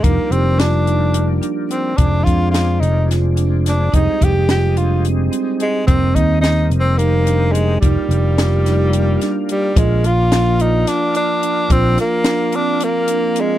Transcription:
0.03 0.17 F1 medium
0.03 1.94 F3 medium
0.03 1.94 G3 medium
0.03 1.94 A#3 medium
0.03 0.33 A#3 medium
0.03 1.95 D4 medium
0.03 0.22 D#4 medium
0.03 kick medium
0.03 closed hi-hat medium
0.30 1.39 F1 medium
0.30 0.61 C4 medium
0.30 0.49 G4 medium
0.30 closed hi-hat medium
0.58 1.43 D4 medium
0.58 0.77 F4 medium
0.58 snare medium
0.58 closed hi-hat medium
0.86 1.05 D#4 medium
0.86 closed hi-hat medium
1.14 1.33 D4 medium
1.14 closed hi-hat medium
1.42 1.79 D4 medium
1.42 closed hi-hat medium
1.70 1.98 C4 medium
1.70 closed hi-hat medium
1.97 2.25 F1 medium
1.97 3.89 F3 medium
1.97 3.90 G#3 medium
1.97 3.89 C4 soft
1.97 2.26 D4 medium
1.97 2.16 D4 medium
1.97 3.90 D4 medium
1.97 kick medium
1.97 closed hi-hat medium
2.24 2.78 F2 medium
2.24 2.63 D4 medium
2.24 2.50 F4 loud
2.24 kick medium
2.24 closed hi-hat medium
2.51 2.82 F4 medium
2.51 snare medium
2.51 closed hi-hat medium
2.80 3.89 F1 medium
2.80 3.09 D#4 medium
2.80 closed hi-hat medium
3.08 3.27 F4 medium
3.08 snare soft
3.08 closed hi-hat medium
3.36 3.74 D4 medium
3.36 closed hi-hat medium
3.66 3.97 D4 medium
3.66 snare soft
3.66 closed hi-hat medium
3.92 4.06 F1 medium
3.92 5.84 G3 medium
3.92 5.85 G#3 medium
3.92 5.85 C4 medium
3.92 4.11 D#4 medium
3.92 4.26 D#4 medium
3.92 5.85 D#4 medium
3.92 kick medium
3.92 closed hi-hat medium
4.20 5.28 F1 medium
4.20 4.39 G4 medium
4.20 4.50 G4 medium
4.20 kick medium
4.20 closed hi-hat medium
4.49 4.67 F4 medium
4.49 4.79 G4 medium
4.49 snare loud
4.49 closed hi-hat medium
4.77 4.95 D4 medium
4.77 5.05 F4 medium
4.77 closed hi-hat medium
5.04 5.23 C4 medium
5.04 closed hi-hat medium
5.32 5.69 C4 medium
5.32 closed hi-hat medium
5.60 5.86 G#3 medium
5.60 closed hi-hat soft
5.87 6.14 F1 medium
5.87 7.79 G3 medium
5.87 7.79 A#3 medium
5.87 6.16 C4 medium
5.87 6.06 C4 medium
5.87 7.79 C4 medium
5.87 7.79 D#4 medium
5.87 kick medium
5.87 closed hi-hat medium
6.15 6.68 D#2 medium
6.15 6.52 C4 medium
6.15 6.41 D#4 medium
6.15 kick medium
6.15 closed hi-hat medium
6.41 6.68 D#4 medium
6.41 snare medium
6.41 closed hi-hat medium
6.70 7.77 F1 medium
6.70 closed hi-hat medium
6.80 6.99 C4 medium
6.98 7.54 A#3 medium
6.98 7.17 D#4 medium
6.98 closed hi-hat medium
7.26 7.63 D4 medium
7.26 closed hi-hat medium
7.52 7.80 G#3 medium
7.52 closed hi-hat medium
7.80 7.95 F1 medium
7.80 9.44 G3 medium
7.80 9.73 G3 medium
7.80 9.73 A#3 medium
7.80 9.73 D4 medium
7.80 8.00 D#4 medium
7.80 9.73 F4 medium
7.80 kick loud
7.80 closed hi-hat medium
8.09 9.16 F1 medium
8.09 8.28 G4 medium
8.09 closed hi-hat medium
8.37 8.56 F4 medium
8.37 snare medium
8.37 closed hi-hat medium
8.64 8.83 D#4 medium
8.64 snare soft
8.64 closed hi-hat medium
8.93 9.12 D4 medium
8.93 closed hi-hat medium
9.20 9.57 D4 medium
9.20 snare soft
9.20 closed hi-hat medium
9.49 9.79 G3 medium
9.49 closed hi-hat medium
9.74 10.83 A#1 medium
9.74 13.58 F3 medium
9.74 10.07 G#3 medium
9.74 13.58 A#3 medium
9.74 13.58 D4 medium
9.74 10.13 F4 medium
9.74 13.58 F4 medium
9.74 kick loud
9.74 closed hi-hat medium
10.04 10.63 F4 medium
10.04 closed hi-hat medium
10.32 10.50 D4 medium
10.32 snare medium
10.32 closed hi-hat medium
10.59 10.90 D#4 medium
10.59 10.96 F4 medium
10.59 closed hi-hat medium
10.87 11.15 D4 medium
10.87 snare soft
10.87 closed hi-hat medium
11.14 11.33 D4 medium
11.14 11.73 D4 medium
11.14 closed hi-hat medium
11.42 11.61 D4 medium
11.42 closed hi-hat medium
11.70 11.96 A#1 loud
11.70 11.99 C4 medium
11.70 12.07 F4 medium
11.70 kick medium
11.70 closed hi-hat medium
11.98 12.57 A#3 medium
11.98 snare soft
11.98 closed hi-hat medium
12.24 12.44 D4 medium
12.24 snare loud
12.24 closed hi-hat medium
12.52 12.90 C4 medium
12.52 12.85 D4 medium
12.52 closed hi-hat medium
12.80 13.42 A#3 loud
12.80 closed hi-hat medium
13.08 13.27 D4 medium
13.08 closed hi-hat medium
13.35 13.54 C4 medium
13.35 closed hi-hat medium
13.41 13.58 G#3 medium

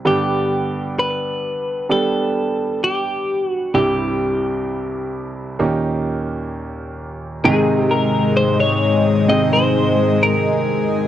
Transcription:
0.05 3.71 G2 medium
0.05 3.71 D3 medium
0.05 1.81 G3 medium
0.05 1.81 B3 medium
0.05 1.81 D4 medium
0.05 1.81 G4 medium
0.05 0.95 G4 medium
0.99 1.87 B4 medium
1.89 3.65 G3 medium
1.89 3.65 B3 soft
1.89 3.65 D4 medium
1.89 3.65 G4 medium
1.89 2.83 A4 medium
2.84 3.48 G4 medium
3.48 3.74 F#4 medium
3.74 5.55 C2 medium
3.74 5.55 G2 medium
3.74 5.50 G3 medium
3.74 5.50 C4 medium
3.74 5.50 E4 medium
3.74 5.50 G4 medium
3.74 5.55 G4 medium
5.59 7.40 D#2 medium
5.59 7.40 A#2 medium
5.59 7.35 A#3 medium
5.59 7.35 C#4 medium
5.59 7.35 D#4 medium
5.59 7.35 G4 medium
7.43 11.08 G#2 medium
7.43 9.19 C3 medium
7.43 11.08 C3 medium
7.43 11.08 D#3 medium
7.43 11.08 G#3 medium
7.43 9.19 G#3 medium
7.43 9.20 D#4 medium
7.43 9.20 G#4 medium
7.43 11.08 G#4 medium
7.43 7.80 G#4 loud
7.43 9.20 D#5 medium
7.43 11.08 D#5 medium
7.80 7.92 G4 loud
7.91 8.36 A#4 medium
8.37 8.60 C5 medium
8.60 9.29 C#5 loud
9.28 11.04 G#3 medium
9.28 11.04 C4 medium
9.28 11.04 D#4 medium
9.28 11.04 G#4 medium
9.28 11.04 D#5 medium
9.28 9.51 D#5 medium
9.53 10.24 C5 loud
10.23 11.08 A#4 medium

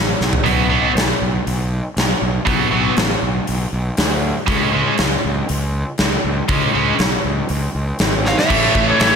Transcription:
0.00 0.13 A1 medium
0.21 0.37 B1 medium
0.21 snare medium
0.33 floor tom medium
0.44 0.79 B1 medium
0.44 0.65 B2 medium
0.44 0.65 F#3 medium
0.44 0.65 B3 medium
0.44 open hi-hat soft
0.69 0.90 B2 medium
0.69 0.90 F#3 medium
0.69 0.90 B3 medium
0.95 1.12 B1 medium
0.95 snare loud
0.95 open hi-hat soft
1.22 1.38 B1 medium
1.47 1.80 B1 medium
1.47 open hi-hat soft
1.97 2.13 B1 medium
1.97 snare medium
1.97 open hi-hat soft
2.22 2.39 B1 medium
2.46 2.64 B1 medium
2.46 2.66 B2 medium
2.46 2.67 F#3 medium
2.46 2.67 B3 medium
2.46 kick loud
2.46 open hi-hat soft
2.71 2.89 B1 medium
2.71 2.92 B2 medium
2.71 2.92 F#3 medium
2.71 2.92 B3 loud
2.97 3.14 A1 medium
2.97 snare loud
2.97 open hi-hat soft
3.23 3.39 B1 medium
3.47 3.65 B1 medium
3.47 open hi-hat medium
3.73 3.89 B1 medium
3.97 4.31 D2 medium
3.97 snare loud
3.97 open hi-hat soft
4.47 4.81 C#2 medium
4.47 4.68 C#3 medium
4.47 4.68 G#3 medium
4.47 4.68 C#4 medium
4.47 kick loud
4.47 open hi-hat soft
4.71 4.92 C#3 medium
4.71 4.92 G#3 medium
4.71 4.93 C#4 medium
4.98 5.15 C#2 medium
4.98 snare loud
4.98 open hi-hat soft
5.25 5.41 C#2 medium
5.49 5.83 C#2 medium
5.49 open hi-hat soft
5.98 6.16 C#2 medium
5.98 snare loud
5.98 open hi-hat soft
6.24 6.41 C#2 medium
6.48 6.66 C#2 medium
6.48 6.69 C#3 medium
6.48 6.69 G#3 medium
6.48 6.69 C#4 loud
6.48 kick loud
6.48 open hi-hat soft
6.73 6.91 C#2 medium
6.73 6.94 C#3 medium
6.73 6.94 G#3 medium
6.73 6.94 C#4 loud
6.99 7.16 B1 medium
6.99 snare loud
6.99 open hi-hat soft
7.25 7.41 C#2 medium
7.49 7.66 C#2 medium
7.49 open hi-hat soft
7.75 7.91 C#2 medium
7.99 8.33 G#1 medium
7.99 snare loud
7.99 open hi-hat soft
8.26 8.37 C#5 medium
8.26 8.39 F5 medium
8.26 snare medium
8.38 8.84 C#5 medium
8.38 8.85 E5 medium
8.38 snare medium
8.48 8.67 A1 medium
8.48 9.16 A2 medium
8.48 9.16 E3 medium
8.48 9.16 A3 medium
8.48 kick loud
8.48 crash loud
8.52 9.16 A3 medium
8.52 9.16 E4 medium
8.52 9.16 B4 medium
8.75 8.92 A1 loud
8.75 kick medium
8.89 9.00 A4 medium
8.89 9.00 C#5 loud
9.00 9.16 A1 loud
9.00 9.16 A2 medium
9.00 9.16 E3 medium
9.00 9.16 A3 loud
9.00 9.16 A4 medium
9.00 9.16 C#5 medium
9.00 snare loud
9.00 open hi-hat medium

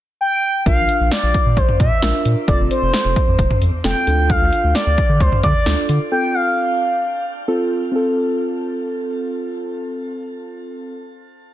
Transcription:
0.21 0.63 G5 loud
0.66 0.76 A#1 loud
0.66 1.36 D4 medium
0.66 1.36 F4 medium
0.66 1.36 A#4 medium
0.66 1.09 F5 loud
0.66 kick loud
0.66 closed hi-hat medium
0.78 0.88 A#1 medium
0.89 closed hi-hat medium
1.00 1.10 A#1 medium
1.11 1.59 D5 loud
1.11 snare loud
1.11 closed hi-hat medium
1.23 1.33 A#1 medium
1.34 kick medium
1.34 closed hi-hat medium
1.46 1.56 A#2 loud
1.57 1.67 A#1 loud
1.57 1.79 C5 medium
1.57 kick medium
1.57 closed hi-hat medium
1.69 mid tom medium
1.80 1.90 A#2 loud
1.80 2.22 E5 medium
1.80 kick medium
1.80 closed hi-hat medium
2.02 2.12 A#1 loud
2.02 2.37 D4 medium
2.02 2.37 F4 medium
2.02 2.37 A#4 medium
2.02 snare loud
2.02 closed hi-hat medium
2.25 2.35 A#2 medium
2.25 closed hi-hat medium
2.48 2.58 F1 loud
2.48 3.17 C4 medium
2.48 3.17 F4 medium
2.48 3.17 A4 medium
2.48 2.58 D5 loud
2.48 kick loud
2.48 closed hi-hat medium
2.59 2.69 F1 medium
2.71 3.58 C5 loud
2.71 closed hi-hat medium
2.82 2.92 F1 medium
2.94 snare loud
2.94 closed hi-hat medium
3.05 3.15 F1 loud
3.16 kick medium
3.16 closed hi-hat medium
3.28 3.37 F2 medium
3.39 3.49 F1 loud
3.39 kick medium
3.39 closed hi-hat medium
3.51 mid tom medium
3.62 3.72 F2 loud
3.62 closed hi-hat medium
3.84 3.94 F1 loud
3.84 4.07 C4 medium
3.84 4.06 F4 medium
3.84 4.06 A4 medium
3.84 4.31 G5 loud
3.84 snare loud
3.84 closed hi-hat medium
4.07 4.37 D2 loud
4.07 4.80 D4 medium
4.07 4.80 F4 medium
4.07 4.80 A4 medium
4.07 closed hi-hat medium
4.30 4.75 F5 loud
4.30 kick loud
4.30 closed hi-hat medium
4.41 4.51 D2 loud
4.53 closed hi-hat medium
4.64 4.74 D2 loud
4.75 5.22 D5 loud
4.75 snare loud
4.75 closed hi-hat medium
4.87 4.96 D2 loud
4.98 kick medium
4.98 closed hi-hat medium
5.09 5.19 D3 medium
5.20 5.30 D2 loud
5.20 5.43 C5 medium
5.20 kick medium
5.20 closed hi-hat medium
5.32 mid tom medium
5.43 5.53 D3 loud
5.43 5.86 D5 medium
5.43 kick medium
5.43 closed hi-hat medium
5.66 5.76 D2 loud
5.66 6.01 D4 medium
5.66 6.01 F4 medium
5.66 6.01 A4 medium
5.66 snare loud
5.66 closed hi-hat medium
5.89 5.99 D3 loud
5.89 closed hi-hat medium
6.11 6.81 C4 medium
6.11 6.81 F4 medium
6.11 6.81 A4 medium
6.11 6.36 G5 loud
6.34 7.25 F5 loud
7.48 7.83 C4 medium
7.48 7.83 F4 medium
7.48 7.83 A4 loud
7.92 10.92 C4 medium
7.92 10.94 F4 medium
7.96 10.96 A4 medium

